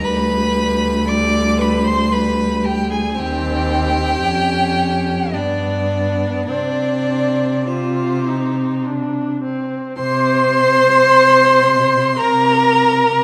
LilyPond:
<<
  \new Staff \with { instrumentName = "Violin" } { \time 3/4 \key c \minor \tempo 4 = 55 b''4 d'''8 b''16 c'''16 b''8 g''16 aes''16 | g''2 d''4 | d''4 c''4 r4 | c'''2 bes''4 | }
  \new Staff \with { instrumentName = "Violin" } { \time 3/4 \key c \minor b'4 d''8 b'16 c''16 b'8 g'16 aes'16 | g'2 d'4 | d'4 c'4 r4 | c'''2 bes''4 | }
  \new Staff \with { instrumentName = "Viola" } { \time 3/4 \key c \minor g4 g4 g4 | c'4 des'4 b4 | c'4 f'8 ees'8 d'8 c'8 | c''2 bes'4 | }
  \new Staff \with { instrumentName = "Cello" } { \clef bass \time 3/4 \key c \minor d,2. | ees,4 f,4 g,4 | c2. | c4 c4 c4 | }
>>